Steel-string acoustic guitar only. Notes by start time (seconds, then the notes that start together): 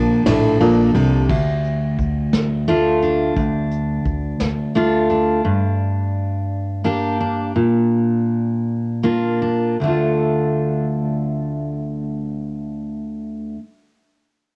Already playing: A#2 D3 D4
0.26 A2
0.60 A#2
0.95 C3
1.29 D2
2.68 A3 D4 F4
3.03 D4
3.37 D2
4.75 A3 D4 F4
5.10 D4
5.45 G2
6.84 A#3 D4 G4
7.20 D4
7.56 A#2
9.03 A#3 D4 F4
9.42 D4
9.80 D2 D3 A3
9.85 D4 F4